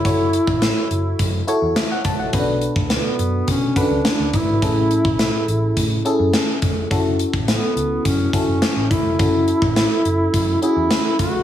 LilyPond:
<<
  \new Staff \with { instrumentName = "FM electric piano" } { \time 4/4 \key fis \minor \tempo 4 = 105 << { r2. e''16 fis''16 a''16 fis''16~ | fis''16 r2. r8. | r1 | r1 |
r1 | } \\ { <e' fis' a' cis''>4. r4 <e' fis' a' cis''>4. | <b, cis' d' fis' a' b'>4. r4 <cis' d' fis' a' b'>4. | <a, cis' e' gis' a'>4. r4 <cis' e' gis' a'>4. | <cis' e' fis' a'>4. r4 <cis' e' fis' a'>4. |
<cis' e' fis' a'>4. r4 <cis' e' fis' gis'>4. | } >> }
  \new Staff \with { instrumentName = "Duduk" } { \time 4/4 \key fis \minor e'2~ e'8 r4. | r4 b4 cis'8 d'4 e'8~ | e'2~ e'8 r4. | r4 b4 cis'8 cis'4 e'8~ |
e'2~ e'8 e'4 fis'8 | }
  \new Staff \with { instrumentName = "Picked electric bass" } { \clef bass \time 4/4 \key fis \minor fis,,8. a,,8 r16 fis,,8 fis,8 r16 e,16 r8 ais,,8 | b,,8. d,8 r16 fis,8 b,8 r16 cis,16 r16 d,16 g,,16 gis,,16 | a,,8. b,,8 r16 a,,8 a,8 r16 fis,16 r8 eis,,8 | fis,,8. a,,8 r16 cis,8 fis,8 r16 fis,,16 r16 a,,16 e,,16 eis,,16 |
fis,,8. a,,8 r16 fis,,8 fis,8 r16 e,16 r8 ais,,8 | }
  \new DrumStaff \with { instrumentName = "Drums" } \drummode { \time 4/4 <hh bd>8 hh16 bd16 <hh sn>8 hh8 <hh bd>8 hh8 <hh sn>8 <hh bd>8 | <hh bd>8 hh16 bd16 <hh sn>8 hh8 <hh bd>8 <hh bd>8 <hh sn>8 <hh bd>8 | <hh bd>8 hh16 bd16 <hh sn>8 hh8 <hh bd>8 hh8 <hh sn>8 <hh bd>8 | <hh bd>8 hh16 bd16 <hh sn>8 hh8 <hh bd>8 <hh bd>8 <hh sn>8 <hh bd>8 |
<hh bd>8 hh16 bd16 <hh sn>8 hh8 <hh bd>8 hh8 <hh sn>8 <hh bd>8 | }
>>